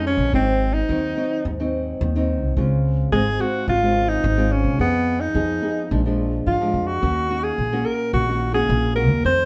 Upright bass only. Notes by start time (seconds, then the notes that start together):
Already playing: F2
0.17 A#1
0.33 G#1
0.89 D#2
1.45 D#2
2.01 D#2
2.41 C2
2.57 C#2
3.12 G#1
3.68 G#1
4.24 G#1
4.64 C2
4.79 F2
5.35 F2
5.91 A#1
6.47 G#2
6.74 F2
7.03 D#2
7.58 A#1
8.13 A#1
8.69 A#1
9.09 D#2
9.24 F2